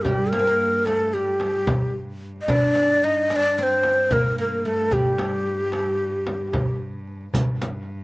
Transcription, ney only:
0.02 G4
0.30 A#4
0.86 A4
1.14 G4
2.42 D#5
2.50 D5
3.04 D#5
3.32 D5 D#5
3.58 D5
3.63 C5
4.13 A#4
4.40 A#4
4.67 A4
4.93 G4

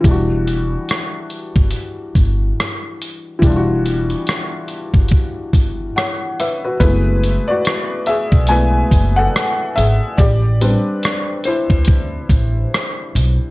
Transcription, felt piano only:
0.01 E3 G3
0.08 D4 F#4
3.39 E3 G3
3.46 D4 F4
3.56 F#4
5.96 C#5 F#5
6.40 B4 E5
6.65 F#4 B4
6.80 G#3 A3 B3 E4 B4
7.48 F#4 D5
8.07 G#4 E5
8.49 G#3 A3 B3 E4 B4 G#5
9.16 A4 F#5
9.76 G#4 E5
10.18 G4 D5
10.61 G3 C4 D4 B4
11.45 E4 C5

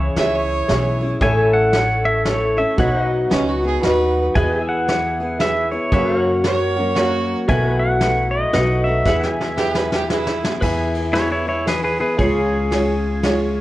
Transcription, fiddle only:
0.18 E5
0.35 C#5
3.30 C#4
3.49 F#4
3.66 G#4
3.82 B4
6.45 C#5
6.96 F#4
9.57 G4
9.76 B4
9.93 G4
10.10 E4

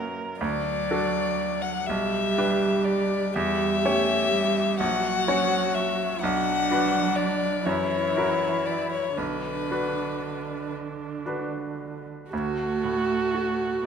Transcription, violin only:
0.40 D5
1.61 F#5
1.86 E5
2.84 D5
3.34 E5
4.79 F#5
5.74 E5
6.21 F#5
7.16 D5
7.66 C#5
8.65 D5
8.92 C#5
9.17 B4
12.32 A4

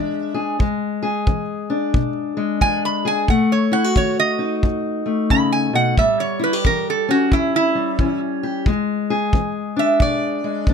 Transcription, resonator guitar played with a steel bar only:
Already playing: E5
2.62 G#5
2.85 B5
3.07 G#5
3.30 F#5
3.52 C#5
3.73 F#5
3.97 C#5
4.20 D#5
5.31 B5
5.52 G#5
5.75 F#5
5.99 E5
6.20 C#5
6.44 B4
6.66 A#4
6.90 A4
7.11 F#4
7.33 E4
7.56 E4
9.79 E5
10.02 D5

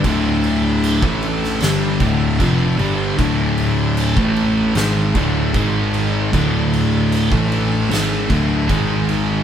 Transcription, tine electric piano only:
0.04 D2
1.02 A1
1.61 G1
2.00 D2
2.39 F1
2.78 G1
3.18 D2
4.16 A1
4.75 G#1
5.15 D2
5.54 G#1
6.34 D2
7.31 A1
7.91 G#1
8.30 D2
8.69 G#1

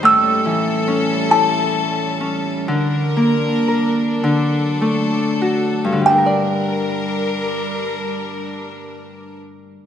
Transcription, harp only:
Already playing: D#4 G4
0.03 A2
0.45 E3
0.88 C#4
1.30 E4
2.21 C#4
2.68 D3
3.17 A#3
3.68 A#4
4.24 D3
4.81 A3
5.42 F#4
5.84 G2
5.92 D3
6.01 G3
6.09 D4
6.18 A#4
6.26 D5

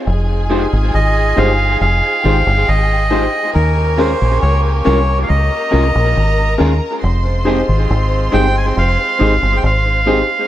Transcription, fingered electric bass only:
0.07 F1
0.73 G#1
0.94 G#1
1.38 G1
1.81 F1
2.25 G#1
2.47 G1
2.68 G#1
3.55 D#2
4.22 A#1
4.43 C#2
4.87 C2
5.30 C#2
5.73 C2
5.95 A#1
6.17 G#1
6.60 D#2
7.03 F1
7.69 G#1
7.90 G#1
8.34 G1
8.77 F1
9.21 G#1
9.43 G1
9.64 G#1

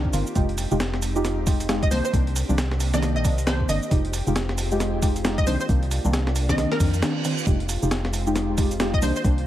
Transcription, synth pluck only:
1.83 D#5
1.91 C5
2.05 C5
2.94 D#5
3.16 D#5
3.47 C5
3.69 D#5
5.38 D#5
5.47 C5
5.61 C5
6.49 D#5
6.72 A#4
8.94 D#5
9.03 C5
9.16 C5

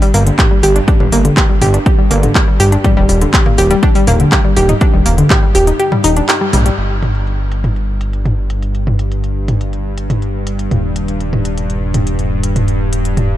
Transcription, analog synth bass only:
0.14 G1
0.63 G1
1.00 G1
1.12 G1
1.62 G1
2.11 G1
2.60 G1
2.97 D#1
3.09 D#1
3.58 D#1
4.07 D#1
4.57 D#1
4.94 D#1
5.06 D#1
5.55 D#1
6.04 D#1
6.53 A#1
6.78 G1
10.71 D#1

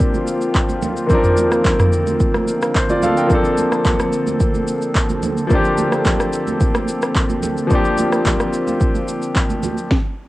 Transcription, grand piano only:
Already playing: F3 A#3 C4 D4 G4
1.07 D#3 A#3 C4
1.13 F3 D4 A#4
2.76 C5
2.90 F4 D5
3.03 A4 F5
3.18 A#4 G5
3.27 F3 A#3
3.31 C4 D4 A4
5.47 F3 A#3 C4
5.53 D4 G4
7.67 F3 A#3 C4
7.73 D4 G4

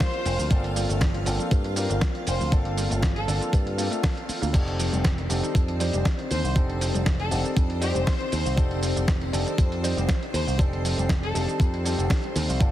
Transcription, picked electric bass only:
0.26 F1
0.39 D2
0.51 G1
0.89 G1
1.26 G1
1.52 G2
1.90 G1
2.27 F1
2.41 D2
2.52 G1
2.91 G1
3.28 G1
3.53 G2
4.29 muted picked electric bass stroke
4.42 D2
4.54 F1
4.93 F1
5.30 F1
5.55 F2
5.94 F1
6.31 D#2
6.44 C2
6.95 F1
7.31 F1
7.57 F2
7.95 F1
8.32 D#2
8.46 C2
8.58 F1
8.96 F1
9.33 F1
9.58 F2
9.97 F1
10.34 D#2
10.47 C2
10.98 F1
11.35 F1
11.60 F2
11.98 F1
12.36 D#2
12.49 C2
12.61 G1

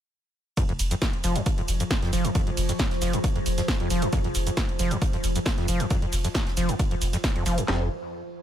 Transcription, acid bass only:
0.57 F2
0.69 F2
0.91 F2
1.24 F3
1.36 D#2
1.58 F2
1.80 F2
2.02 F2
2.13 F3
2.24 D#2
2.35 F2
2.47 F2
2.69 F2
3.02 F3
3.13 D#2
3.36 F2
3.58 F2
3.80 F2
3.90 F3
4.02 D#2
4.13 F2
4.24 F2
4.47 F2
4.79 F3
4.91 D#2
5.13 F2
5.36 F2
5.58 F2
5.68 F3
5.80 D#2
5.91 F2
6.02 F2
6.24 F2
6.57 F3
6.69 D#2
6.91 F2
7.13 F2
7.36 F2
7.46 F3
7.58 D#2
7.68 F2

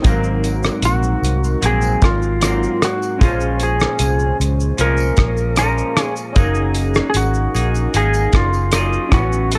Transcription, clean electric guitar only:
0.04 G#2 F#3 A#3 C4
1.61 G#2 F#3 A#3 C4
2.41 G#2 F#3 A#3 C4
3.19 A#2 F3 G#3 C#4
4.77 A#2 F3 G#3 C#4
5.56 A#2 F3 G#3 C#4
6.36 F#3 A#3 D#4 G#4
7.55 A#3 D#4 G#4
7.95 F#3 A#3 D#4 G#4
8.72 F#3 A#3 D#4 G#4
9.12 A2 F#3 B3 C#4

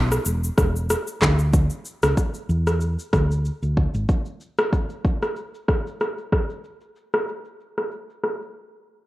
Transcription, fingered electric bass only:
Already playing: B1
0.26 E1
0.58 E1
1.22 D2
2.03 C#2
2.49 E2
3.13 D2
3.63 D2
3.94 G#1

